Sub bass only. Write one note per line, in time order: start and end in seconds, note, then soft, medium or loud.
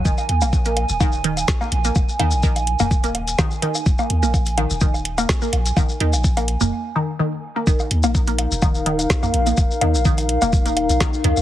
0.05 0.15 D#1 loud
0.29 0.43 D#2 medium
0.42 0.85 A#1 medium
0.89 1.44 D#1 medium
1.72 1.91 A#1 medium
1.96 2.06 D#1 loud
2.19 2.34 D#2 medium
2.32 2.75 A#1 medium
2.80 3.35 D#1 medium
3.86 3.96 D#1 loud
4.10 4.24 D#2 medium
4.23 4.66 A#1 medium
4.70 5.25 D#1 medium
5.53 5.72 A#1 medium
5.77 5.87 D#1 loud
6.00 6.15 D#2 medium
6.13 6.56 A#1 medium
6.61 6.72 D#1 medium
7.67 7.77 D#1 loud
7.91 8.05 D#2 medium
8.04 8.47 A#1 medium
8.51 9.06 D#1 medium
9.34 9.53 A#1 medium
9.58 9.67 D#1 loud
9.81 9.96 D#2 medium
9.94 10.37 A#1 medium
10.42 10.89 D#1 medium
10.89 10.98 A#1 medium
11.24 11.34 C#2 medium
11.37 11.42 A#1 loud